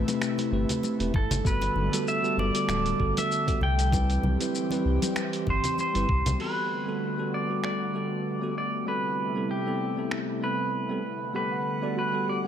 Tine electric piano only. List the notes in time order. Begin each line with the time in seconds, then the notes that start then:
0.06 A3 C4 G4 B4
0.51 A3 C4 G4 B4
0.99 A3 C4 G4 B4
1.44 G3 B3 F#4 A4
1.92 G3 B3 F#4 A4
2.22 G3 B3 F#4 A4
2.53 G3 B3 F#4 A4
2.98 G3 B3 F#4 A4
3.46 G3 B3 F#4 A4
3.91 G3 C4 E4 B4
4.39 G3 C4 E4 B4
4.70 G3 C4 E4 B4
5.01 G3 C4 E4 B4
5.94 G3 C4 E4 B4
6.39 G3 B3 F#4 A4
6.86 G3 B3 F#4 A4
7.17 G3 B3 F#4 A4
7.48 G3 B3 F#4 A4
7.93 G3 B3 F#4 A4
8.41 G3 B3 F#4 A4
8.86 G3 B3 C4 A4
9.35 G3 B3 C4 A4
9.66 G3 B3 C4 A4
9.96 G3 B3 C4 A4
10.41 G3 B3 C4 A4
10.89 G3 B3 C4 A4
11.34 G3 B3 A4 F#5
11.82 G3 B3 F#4 A4
12.12 G3 B3 F#4 A4
12.44 G3 B3